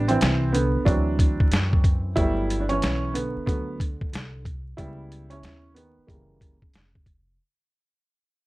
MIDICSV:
0, 0, Header, 1, 5, 480
1, 0, Start_track
1, 0, Tempo, 652174
1, 1597, Time_signature, 4, 2, 24, 8
1, 6233, End_track
2, 0, Start_track
2, 0, Title_t, "Upright piano"
2, 0, Program_c, 0, 0
2, 0, Note_on_c, 0, 62, 100
2, 61, Note_on_c, 0, 60, 90
2, 78, Note_on_c, 0, 52, 65
2, 80, Note_off_c, 0, 62, 0
2, 377, Note_off_c, 0, 52, 0
2, 386, Note_on_c, 0, 59, 77
2, 401, Note_off_c, 0, 60, 0
2, 404, Note_on_c, 0, 50, 63
2, 624, Note_off_c, 0, 50, 0
2, 628, Note_on_c, 0, 62, 85
2, 629, Note_on_c, 0, 52, 49
2, 634, Note_on_c, 0, 54, 64
2, 639, Note_off_c, 0, 59, 0
2, 641, Note_on_c, 0, 60, 55
2, 1323, Note_off_c, 0, 62, 0
2, 1330, Note_off_c, 0, 54, 0
2, 1563, Note_off_c, 0, 52, 0
2, 1569, Note_off_c, 0, 60, 0
2, 1587, Note_on_c, 0, 64, 106
2, 1592, Note_on_c, 0, 54, 53
2, 1597, Note_on_c, 0, 57, 50
2, 1602, Note_on_c, 0, 59, 53
2, 1603, Note_on_c, 0, 55, 76
2, 1906, Note_off_c, 0, 55, 0
2, 1914, Note_on_c, 0, 62, 66
2, 1931, Note_off_c, 0, 64, 0
2, 1980, Note_on_c, 0, 61, 95
2, 1987, Note_off_c, 0, 62, 0
2, 1997, Note_on_c, 0, 52, 67
2, 2287, Note_off_c, 0, 61, 0
2, 2297, Note_off_c, 0, 52, 0
2, 2298, Note_off_c, 0, 59, 0
2, 2309, Note_on_c, 0, 59, 68
2, 2321, Note_on_c, 0, 50, 59
2, 2538, Note_off_c, 0, 59, 0
2, 2541, Note_off_c, 0, 54, 0
2, 2543, Note_off_c, 0, 50, 0
2, 2545, Note_off_c, 0, 57, 0
2, 2549, Note_on_c, 0, 59, 76
2, 2552, Note_on_c, 0, 54, 43
2, 2556, Note_on_c, 0, 57, 44
2, 2562, Note_on_c, 0, 50, 58
2, 2770, Note_off_c, 0, 54, 0
2, 2773, Note_off_c, 0, 57, 0
2, 2774, Note_off_c, 0, 59, 0
2, 3250, Note_off_c, 0, 50, 0
2, 3511, Note_on_c, 0, 64, 92
2, 3517, Note_on_c, 0, 49, 51
2, 3520, Note_on_c, 0, 55, 83
2, 3525, Note_on_c, 0, 59, 54
2, 3882, Note_off_c, 0, 64, 0
2, 3891, Note_off_c, 0, 55, 0
2, 3901, Note_on_c, 0, 61, 92
2, 3919, Note_on_c, 0, 64, 70
2, 4208, Note_off_c, 0, 49, 0
2, 4208, Note_off_c, 0, 61, 0
2, 4211, Note_off_c, 0, 59, 0
2, 4218, Note_off_c, 0, 64, 0
2, 4228, Note_on_c, 0, 59, 73
2, 4242, Note_on_c, 0, 51, 51
2, 4463, Note_off_c, 0, 51, 0
2, 4468, Note_on_c, 0, 58, 65
2, 4471, Note_on_c, 0, 52, 52
2, 4474, Note_on_c, 0, 55, 47
2, 4480, Note_off_c, 0, 59, 0
2, 4483, Note_on_c, 0, 49, 55
2, 4821, Note_off_c, 0, 52, 0
2, 4822, Note_off_c, 0, 55, 0
2, 4825, Note_off_c, 0, 58, 0
2, 5171, Note_off_c, 0, 49, 0
2, 6233, End_track
3, 0, Start_track
3, 0, Title_t, "Upright bass"
3, 0, Program_c, 1, 32
3, 0, Note_on_c, 1, 33, 85
3, 134, Note_off_c, 1, 33, 0
3, 159, Note_on_c, 1, 36, 81
3, 534, Note_off_c, 1, 36, 0
3, 637, Note_on_c, 1, 38, 86
3, 1093, Note_off_c, 1, 38, 0
3, 1118, Note_on_c, 1, 42, 92
3, 1574, Note_off_c, 1, 42, 0
3, 1597, Note_on_c, 1, 31, 92
3, 2053, Note_off_c, 1, 31, 0
3, 2079, Note_on_c, 1, 35, 83
3, 2455, Note_off_c, 1, 35, 0
3, 2556, Note_on_c, 1, 38, 80
3, 3013, Note_off_c, 1, 38, 0
3, 3039, Note_on_c, 1, 36, 88
3, 3494, Note_off_c, 1, 36, 0
3, 3522, Note_on_c, 1, 37, 95
3, 3975, Note_off_c, 1, 37, 0
3, 3994, Note_on_c, 1, 39, 82
3, 4372, Note_off_c, 1, 39, 0
3, 4477, Note_on_c, 1, 30, 85
3, 4933, Note_off_c, 1, 30, 0
3, 4959, Note_on_c, 1, 29, 80
3, 5414, Note_off_c, 1, 29, 0
3, 6233, End_track
4, 0, Start_track
4, 0, Title_t, "Muted upright bass strokes"
4, 555, Note_on_c, 9, 29, 44
4, 628, Note_off_c, 9, 29, 0
4, 2475, Note_on_c, 9, 29, 43
4, 2549, Note_off_c, 9, 29, 0
4, 4396, Note_on_c, 9, 29, 40
4, 4470, Note_off_c, 9, 29, 0
4, 6233, End_track
5, 0, Start_track
5, 0, Title_t, "Drums"
5, 64, Note_on_c, 9, 42, 50
5, 137, Note_off_c, 9, 42, 0
5, 156, Note_on_c, 9, 42, 72
5, 165, Note_on_c, 9, 38, 96
5, 229, Note_off_c, 9, 42, 0
5, 239, Note_off_c, 9, 38, 0
5, 401, Note_on_c, 9, 42, 68
5, 475, Note_off_c, 9, 42, 0
5, 636, Note_on_c, 9, 36, 79
5, 645, Note_on_c, 9, 42, 64
5, 710, Note_off_c, 9, 36, 0
5, 719, Note_off_c, 9, 42, 0
5, 875, Note_on_c, 9, 36, 90
5, 881, Note_on_c, 9, 42, 73
5, 949, Note_off_c, 9, 36, 0
5, 954, Note_off_c, 9, 42, 0
5, 1032, Note_on_c, 9, 36, 89
5, 1106, Note_off_c, 9, 36, 0
5, 1116, Note_on_c, 9, 42, 71
5, 1130, Note_on_c, 9, 38, 99
5, 1189, Note_off_c, 9, 42, 0
5, 1204, Note_off_c, 9, 38, 0
5, 1273, Note_on_c, 9, 36, 89
5, 1347, Note_off_c, 9, 36, 0
5, 1354, Note_on_c, 9, 36, 92
5, 1357, Note_on_c, 9, 42, 64
5, 1428, Note_off_c, 9, 36, 0
5, 1431, Note_off_c, 9, 42, 0
5, 1595, Note_on_c, 9, 42, 81
5, 1597, Note_on_c, 9, 36, 95
5, 1669, Note_off_c, 9, 42, 0
5, 1670, Note_off_c, 9, 36, 0
5, 1843, Note_on_c, 9, 42, 69
5, 1916, Note_off_c, 9, 42, 0
5, 1982, Note_on_c, 9, 42, 46
5, 2056, Note_off_c, 9, 42, 0
5, 2077, Note_on_c, 9, 42, 73
5, 2087, Note_on_c, 9, 38, 90
5, 2151, Note_off_c, 9, 42, 0
5, 2161, Note_off_c, 9, 38, 0
5, 2321, Note_on_c, 9, 42, 72
5, 2394, Note_off_c, 9, 42, 0
5, 2556, Note_on_c, 9, 36, 84
5, 2566, Note_on_c, 9, 42, 72
5, 2630, Note_off_c, 9, 36, 0
5, 2640, Note_off_c, 9, 42, 0
5, 2797, Note_on_c, 9, 36, 91
5, 2804, Note_on_c, 9, 42, 70
5, 2870, Note_off_c, 9, 36, 0
5, 2877, Note_off_c, 9, 42, 0
5, 2953, Note_on_c, 9, 36, 87
5, 3027, Note_off_c, 9, 36, 0
5, 3043, Note_on_c, 9, 42, 83
5, 3057, Note_on_c, 9, 38, 105
5, 3117, Note_off_c, 9, 42, 0
5, 3131, Note_off_c, 9, 38, 0
5, 3277, Note_on_c, 9, 36, 87
5, 3282, Note_on_c, 9, 42, 53
5, 3350, Note_off_c, 9, 36, 0
5, 3355, Note_off_c, 9, 42, 0
5, 3520, Note_on_c, 9, 36, 82
5, 3521, Note_on_c, 9, 42, 77
5, 3593, Note_off_c, 9, 36, 0
5, 3594, Note_off_c, 9, 42, 0
5, 3766, Note_on_c, 9, 42, 67
5, 3840, Note_off_c, 9, 42, 0
5, 3905, Note_on_c, 9, 42, 48
5, 3979, Note_off_c, 9, 42, 0
5, 3999, Note_on_c, 9, 42, 67
5, 4009, Note_on_c, 9, 38, 82
5, 4073, Note_off_c, 9, 42, 0
5, 4083, Note_off_c, 9, 38, 0
5, 4242, Note_on_c, 9, 42, 64
5, 4316, Note_off_c, 9, 42, 0
5, 4478, Note_on_c, 9, 36, 77
5, 4487, Note_on_c, 9, 42, 67
5, 4552, Note_off_c, 9, 36, 0
5, 4560, Note_off_c, 9, 42, 0
5, 4717, Note_on_c, 9, 36, 91
5, 4723, Note_on_c, 9, 42, 65
5, 4791, Note_off_c, 9, 36, 0
5, 4796, Note_off_c, 9, 42, 0
5, 4874, Note_on_c, 9, 36, 80
5, 4947, Note_off_c, 9, 36, 0
5, 4957, Note_on_c, 9, 42, 81
5, 4971, Note_on_c, 9, 38, 93
5, 5031, Note_off_c, 9, 42, 0
5, 5045, Note_off_c, 9, 38, 0
5, 5117, Note_on_c, 9, 36, 86
5, 5191, Note_off_c, 9, 36, 0
5, 5197, Note_on_c, 9, 36, 77
5, 5199, Note_on_c, 9, 42, 56
5, 5271, Note_off_c, 9, 36, 0
5, 5273, Note_off_c, 9, 42, 0
5, 6233, End_track
0, 0, End_of_file